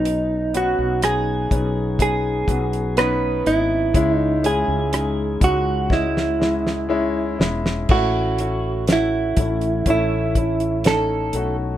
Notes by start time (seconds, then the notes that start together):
Already playing: B1 B2 B3 C#4 D#4
0.05 closed hi-hat
0.54 B3 C#4 F#4, closed hi-hat
0.78 B1
1.02 B3 C#4 D#4 G#4, cross-stick, closed hi-hat
1.51 B1 B3 C#4 D#4, kick, closed hi-hat
1.99 B3 C#4 D#4 G#4, kick, closed hi-hat
2.48 B1 B3 C#4 F#4, kick, closed hi-hat
2.73 closed hi-hat
2.97 B3 C#4 D#4 B4, cross-stick, closed hi-hat
3.46 G#1 B3 C#4 E4 D#5, closed hi-hat
3.94 C#2 C#3 G#3 C#4 E4, kick, closed hi-hat
4.14 D#4
4.43 G#3 C#4 E4 G#4, closed hi-hat
4.68 C#2
4.92 G#3 C#4 D#4, cross-stick, closed hi-hat
5.40 C#2 G#3 C#4 F#4, kick, closed hi-hat
5.44 F#4
5.90 G#3 C#4 E4 D#5, kick, snare
6.17 snare
6.39 G#3 C#4 E4, snare
6.67 snare
6.89 G#3 C#4 E4
7.39 E1 G#3 C#4 E4, snare
7.66 snare
7.89 A1 A2 A3 C#4 E4 F#4, kick, crash
8.38 A3 C#4 E4, closed hi-hat
8.87 A3 C#4 F#4, snare, closed hi-hat
8.93 E4
9.37 A1 A3 C#4 E4, kick, closed hi-hat
9.61 closed hi-hat
9.86 A1 A3 C#4 E4, kick, closed hi-hat
9.90 E4
10.35 A3 C#4 E4, kick, closed hi-hat
10.60 closed hi-hat
10.84 A3 C#4 D#4 A4, snare, closed hi-hat
11.33 B1 A3 C#4 F#4, closed hi-hat